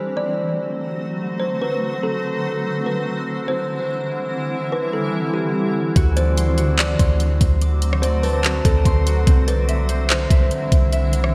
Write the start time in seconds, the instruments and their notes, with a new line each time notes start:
Already playing: ambient pad D3 F#3 A3 C4 F#4, kalimba C5
0.17 kalimba D5
1.40 kalimba C5
1.61 kalimba B4
2.03 kalimba A4
2.65 ambient pad E3 G3 E4
2.86 kalimba B4
3.48 kalimba C5
4.72 kalimba B4
4.93 kalimba A4
5.34 kalimba G4
5.96 808-style bass D2, ambient pad F#3 A3 F#4, harp F#4, kick, closed hi-hat
6.16 kalimba C5, harp D5, closed hi-hat
6.37 harp C6, closed hi-hat
6.58 harp F#4, closed hi-hat
6.79 kalimba D5, clap, closed hi-hat
6.99 808-style bass D2, harp C6, kick, closed hi-hat
7.20 closed hi-hat
7.41 808-style bass D2, kick, closed hi-hat
7.61 harp D6, closed hi-hat
7.82 closed hi-hat
7.93 cross-stick
8.02 kalimba C5, harp D5, closed hi-hat
8.23 kalimba B4, harp A5, open hi-hat
8.44 harp F#4, clap, closed hi-hat
8.65 808-style bass D2, kalimba A4, harp D5, kick, closed hi-hat
8.85 808-style bass D2, harp C6, kick, closed hi-hat
9.07 harp F#4, closed hi-hat
9.27 808-style bass C2, ambient pad D3 E3 G3 C4 E4, harp C4, kick, closed hi-hat
9.47 kalimba B4, harp D5, closed hi-hat
9.69 harp E5, closed hi-hat
9.89 harp C5, closed hi-hat
10.10 kalimba C5, clap, closed hi-hat
10.30 808-style bass C2, harp E5, kick, closed hi-hat
10.51 closed hi-hat
10.72 808-style bass C2, kick, closed hi-hat
10.93 harp E5, closed hi-hat
11.13 closed hi-hat
11.24 cross-stick